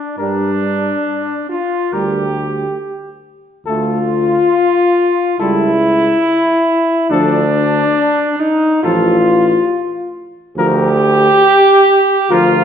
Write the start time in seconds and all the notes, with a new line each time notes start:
Already playing: D4
0.18 G2 G3 D4 A#4
1.49 F4
1.93 D2 G3 G4 A#4
3.66 D2 A3 F4 A4
5.39 C#2 G3 E4 A4
7.10 D2 F3 D4 A4
8.40 D#4
8.83 A1 F3 F4 A4
10.57 D2 F3 G4 A#4
12.30 D2 F3 F4 A#4